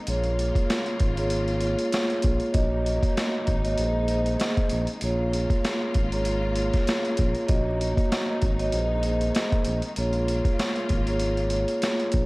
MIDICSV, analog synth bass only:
0, 0, Header, 1, 2, 480
1, 0, Start_track
1, 0, Key_signature, -5, "minor"
1, 0, Tempo, 618557
1, 57, Time_signature, 4, 2, 24, 8
1, 9511, End_track
2, 0, Start_track
2, 0, Title_t, "Analog synth bass"
2, 0, Program_c, 0, 38
2, 61, Note_on_c, 0, 34, 109
2, 403, Note_off_c, 0, 34, 0
2, 781, Note_on_c, 0, 32, 96
2, 1363, Note_off_c, 0, 32, 0
2, 1742, Note_on_c, 0, 34, 99
2, 1862, Note_off_c, 0, 34, 0
2, 1977, Note_on_c, 0, 34, 106
2, 2321, Note_off_c, 0, 34, 0
2, 2701, Note_on_c, 0, 32, 100
2, 2916, Note_off_c, 0, 32, 0
2, 2940, Note_on_c, 0, 34, 100
2, 3387, Note_off_c, 0, 34, 0
2, 3660, Note_on_c, 0, 34, 102
2, 3781, Note_off_c, 0, 34, 0
2, 3897, Note_on_c, 0, 34, 102
2, 4241, Note_off_c, 0, 34, 0
2, 4619, Note_on_c, 0, 32, 93
2, 5203, Note_off_c, 0, 32, 0
2, 5580, Note_on_c, 0, 34, 100
2, 5701, Note_off_c, 0, 34, 0
2, 5815, Note_on_c, 0, 34, 108
2, 6160, Note_off_c, 0, 34, 0
2, 6540, Note_on_c, 0, 32, 99
2, 6755, Note_off_c, 0, 32, 0
2, 6779, Note_on_c, 0, 34, 98
2, 7227, Note_off_c, 0, 34, 0
2, 7499, Note_on_c, 0, 34, 96
2, 7620, Note_off_c, 0, 34, 0
2, 7739, Note_on_c, 0, 34, 105
2, 8082, Note_off_c, 0, 34, 0
2, 8461, Note_on_c, 0, 32, 89
2, 9044, Note_off_c, 0, 32, 0
2, 9421, Note_on_c, 0, 34, 96
2, 9511, Note_off_c, 0, 34, 0
2, 9511, End_track
0, 0, End_of_file